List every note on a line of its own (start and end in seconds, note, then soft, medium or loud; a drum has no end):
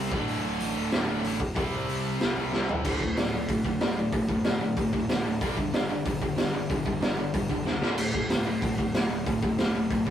0.00 0.10 C3 medium
0.00 0.11 G3 loud
0.00 0.11 G3 medium
0.00 0.12 C4 medium
0.11 0.26 D1 medium
0.11 0.91 D2 medium
0.11 0.91 A2 medium
0.11 0.92 D3 loud
0.11 kick loud
0.28 0.42 D1 medium
0.28 open hi-hat medium
0.44 0.58 D1 medium
0.60 0.74 A1 loud
0.60 open hi-hat medium
0.76 0.90 D1 medium
0.92 1.06 D1 loud
0.92 1.07 D2 medium
0.92 1.08 A2 medium
0.92 1.06 D3 medium
0.92 snare loud
0.92 open hi-hat medium
1.08 1.22 D1 medium
1.08 1.40 D2 medium
1.08 1.39 A2 medium
1.08 1.39 D3 medium
1.24 1.38 A1 medium
1.24 open hi-hat medium
1.40 1.54 D1 medium
1.40 kick medium
1.55 1.70 C2 loud
1.55 2.35 C3 medium
1.55 2.36 G3 medium
1.55 2.34 C4 loud
1.55 kick loud
1.55 open hi-hat medium
1.73 1.87 C2 medium
1.88 2.17 C2 medium
1.88 open hi-hat medium
2.21 2.35 C2 loud
2.21 snare loud
2.21 open hi-hat medium
2.35 2.50 C2 medium
2.35 2.50 C3 medium
2.35 2.52 G3 medium
2.35 2.51 C4 medium
2.51 2.67 C2 medium
2.51 2.83 C3 medium
2.51 2.84 G3 medium
2.51 2.84 C4 medium
2.51 snare medium
2.69 2.83 G1 medium
2.69 floor tom medium
2.84 2.99 D1 medium
2.84 2.99 D2 medium
2.84 3.00 A2 medium
2.84 3.00 D3 medium
2.84 kick loud
2.84 crash loud
3.01 3.15 D1 medium
3.01 3.15 D2 medium
3.01 3.15 A2 medium
3.01 kick medium
3.16 3.46 D1 medium
3.16 3.31 D2 medium
3.16 3.31 A2 medium
3.16 snare loud
3.16 open hi-hat medium
3.32 3.47 D2 medium
3.32 3.47 A2 medium
3.49 3.77 D1 medium
3.49 3.64 D2 medium
3.49 3.64 A2 medium
3.49 kick loud
3.49 open hi-hat medium
3.65 3.79 D2 medium
3.65 3.80 A2 medium
3.65 kick medium
3.80 4.09 D1 medium
3.80 3.95 D2 medium
3.80 3.96 A2 medium
3.80 snare loud
3.80 open hi-hat medium
3.97 4.11 D2 medium
3.97 4.12 A2 medium
4.12 4.27 D1 medium
4.12 4.28 D2 medium
4.12 4.28 A2 medium
4.12 kick loud
4.12 open hi-hat medium
4.29 4.43 D1 medium
4.29 4.43 D2 medium
4.29 4.44 A2 medium
4.29 kick medium
4.44 4.73 D1 medium
4.44 4.59 D2 medium
4.44 4.60 A2 medium
4.44 snare loud
4.44 open hi-hat medium
4.61 4.76 D2 medium
4.61 4.76 A2 medium
4.77 4.91 D1 medium
4.77 4.92 D2 medium
4.77 4.92 A2 medium
4.77 kick loud
4.77 open hi-hat medium
4.93 5.08 D1 medium
4.93 5.08 D2 medium
4.93 5.08 A2 medium
4.93 kick medium
5.08 5.23 D1 medium
5.08 5.24 D2 medium
5.08 5.24 A2 medium
5.08 snare loud
5.08 open hi-hat medium
5.24 5.39 D1 medium
5.24 5.40 D2 medium
5.24 5.40 A2 medium
5.41 5.56 G1 medium
5.41 5.56 G2 medium
5.41 5.57 D3 loud
5.41 5.57 G3 loud
5.41 kick loud
5.41 open hi-hat medium
5.57 5.72 G1 medium
5.57 5.72 G2 medium
5.57 5.72 D3 medium
5.57 kick medium
5.74 6.02 G1 medium
5.74 5.88 G2 medium
5.74 5.88 D3 medium
5.74 snare loud
5.74 open hi-hat medium
5.89 6.04 G2 medium
5.89 6.04 D3 medium
6.06 6.34 G1 medium
6.06 6.21 G2 medium
6.06 6.21 D3 medium
6.06 kick loud
6.06 open hi-hat medium
6.22 6.36 G2 medium
6.22 6.37 D3 medium
6.22 kick medium
6.37 6.66 G1 medium
6.37 6.52 G2 medium
6.37 6.53 D3 medium
6.37 snare loud
6.37 open hi-hat medium
6.54 6.68 G2 medium
6.54 6.69 D3 medium
6.70 6.84 G1 medium
6.70 6.85 G2 medium
6.70 6.85 D3 medium
6.70 kick loud
6.70 open hi-hat medium
6.86 7.00 G1 medium
6.86 7.01 G2 medium
6.86 7.01 D3 medium
6.86 kick medium
7.02 7.30 G1 medium
7.02 7.17 G2 medium
7.02 7.17 D3 medium
7.02 snare loud
7.02 open hi-hat medium
7.19 7.33 G2 medium
7.19 7.33 D3 medium
7.34 7.48 G1 medium
7.34 7.49 G2 medium
7.34 7.49 D3 medium
7.34 kick loud
7.34 open hi-hat medium
7.50 7.64 G1 medium
7.50 7.65 G2 medium
7.50 7.65 D3 medium
7.50 kick medium
7.66 7.83 C#2 medium
7.66 7.81 G2 medium
7.66 7.81 D3 medium
7.66 snare medium
7.82 7.96 D1 medium
7.82 7.97 D2 medium
7.82 7.97 A2 medium
7.82 7.98 D3 medium
7.82 snare medium
7.98 8.13 D1 loud
7.98 8.13 D2 medium
7.98 8.13 A2 medium
7.98 crash loud
8.14 8.28 D1 medium
8.14 8.29 D2 medium
8.14 8.29 A2 medium
8.14 kick medium
8.30 8.59 D1 medium
8.30 8.45 D2 medium
8.30 8.45 A2 medium
8.30 snare loud
8.30 open hi-hat medium
8.46 8.61 D2 medium
8.46 8.61 A2 medium
8.62 8.91 D1 loud
8.62 8.77 D2 medium
8.62 8.77 A2 medium
8.62 kick loud
8.62 open hi-hat medium
8.78 8.93 D2 medium
8.78 8.93 A2 medium
8.78 kick medium
8.94 9.23 D1 medium
8.94 9.09 D2 medium
8.94 9.09 A2 medium
8.94 snare loud
8.94 open hi-hat medium
9.10 9.25 D2 medium
9.10 9.25 A2 medium
9.27 9.41 D1 loud
9.27 9.41 D2 medium
9.27 9.41 A2 medium
9.27 kick loud
9.27 open hi-hat medium
9.43 9.57 D1 medium
9.43 9.57 D2 medium
9.43 9.57 A2 medium
9.43 kick loud
9.58 9.87 D1 loud
9.58 9.73 D2 medium
9.58 9.73 A2 medium
9.58 snare loud
9.58 open hi-hat medium
9.74 9.89 D2 medium
9.74 9.89 A2 medium
9.90 10.05 D1 loud
9.90 10.05 D2 medium
9.90 10.05 A2 medium
9.90 kick loud
9.90 open hi-hat medium
10.06 10.10 D1 medium
10.06 10.10 D2 medium
10.06 10.10 A2 medium
10.06 kick medium